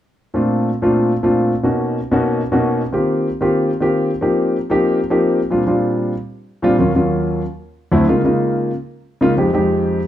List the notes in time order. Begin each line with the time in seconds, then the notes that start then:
0.34 A#2 A3 C4 D4 F4
0.82 A#2 A3 C4 D4 F4
1.23 A#2 A3 C4 D4 F4
1.63 B2 A#3 C#4 D#4 F#4
2.11 B2 A#3 C#4 D#4 F#4
2.52 B2 A#3 C#4 D#4 F#4
2.92 D#3 A#3 C4 F4 G4
3.41 D#3 A#3 C4 F4 G4
3.80 D#3 A#3 C4 F4 G4
4.21 F3 A#3 C4 D#4 G4
4.70 F3 A#3 C4 D#4 G4
5.10 F3 A#3 C4 D#4 G4
5.50 A#2 G3 C4 D4 F4
5.66 A#2 G3 C4 D4 F4
6.62 A#2 G3 C4 D4 F4
6.79 D#2 F#3 A#3 C#4 F4
6.95 D#2 F#3 A#3 C#4 F4
7.92 D2 F#3 A3 C4 E4
8.08 C#3 G#3 A#3 D#4 F4
8.24 C#3 G#3 A#3 D#4 F4
9.21 C#3 G#3 A#3 D#4 F4
9.37 F2 G#3 C4 D#4 G4
9.53 F2 G#3 C4 D#4 G4